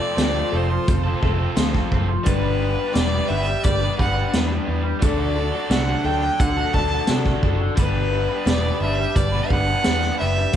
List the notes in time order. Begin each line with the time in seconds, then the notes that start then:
Already playing: F3 A3 C4 F4 A4 D5
0.00 C4 F4 A4
0.15 D2 F3 A3 C4 F4 A4, snare, closed hi-hat
0.51 F1 A3 C4 F4 A4
0.56 C5
0.71 muted overdriven electric guitar stroke
0.86 F1 A3 C4 F4 A4, kick, closed hi-hat
1.04 C4 F4 A4
1.21 F1 A3 C4 F4 A4, kick
1.38 C4 F4 A4
1.56 D2 F3 A3 C4 F4 A4, snare, closed hi-hat
1.74 kick, snare
1.91 F#1 A3 C4 F4 A4, kick
2.09 muted overdriven electric guitar stroke
2.24 G1 G3 B3 D4 G4 B4, kick, closed hi-hat
2.59 B3 D4 B4
2.76 B3 D4 B4
2.93 E1 G3 B3 D4 D5, snare, closed hi-hat
2.97 B4
3.28 G1 G3 B3 D4 E5
3.32 B4
3.47 muted overdriven electric guitar stroke
3.63 G1 G3 B3 D4 B4 D5, kick, closed hi-hat
3.80 B3 D4 B4
3.98 G1 G3 B3 D4 B4 F#5, kick
4.15 B3 D4 B4
4.32 E2 G3 B3 D4 B4, snare, closed hi-hat
4.66 E2 G3 B3 D4 B4
4.84 muted overdriven electric guitar stroke
4.99 D2 D3 F#3 D4 F#4 A4 D5, kick, closed hi-hat
5.35 D4 F#4 A4
5.52 D4 F#4 A4
5.70 C2 D3 D4 F#4 A4 F#5, snare, closed hi-hat
6.04 D2 D3 D4 F#4 A4 G5
6.22 muted overdriven electric guitar stroke
6.40 D2 D3 D4 F#4 A4 F#5, kick, closed hi-hat
6.57 D4 F#4 A4
6.73 D2 D3 D4 F#4 A5, kick
6.78 A4
6.92 D4 F#4 A4
7.07 C3 D3 D4, snare, closed hi-hat
7.11 F#4 A4
7.24 kick, snare
7.42 F#1 D3 D4 F#4 A4, kick
7.60 muted overdriven electric guitar stroke
7.75 G1 G3 B3 D4 G4 B4, kick, closed hi-hat
8.11 B3 D4 B4
8.29 B3 D4 B4
8.46 E1 G3 B3 D4 B4 D5, snare, closed hi-hat
8.79 G1 G3 B4 E5
8.83 B3 D4 B4
8.99 muted overdriven electric guitar stroke
9.15 G1 G3 B3 D4 B4 D5, kick, closed hi-hat
9.33 B3 D4 B4
9.49 G1 G3 B3 D4 B4 F#5, kick
9.53 B4
9.67 B3 D4 B4
9.84 E2 G3 B3 D4 B4, snare, closed hi-hat
10.02 snare
10.19 F#1 G3 B3 D4 B4 E5
10.38 muted overdriven electric guitar stroke
10.51 F3 A3 C4 F4 A4 F5, closed hi-hat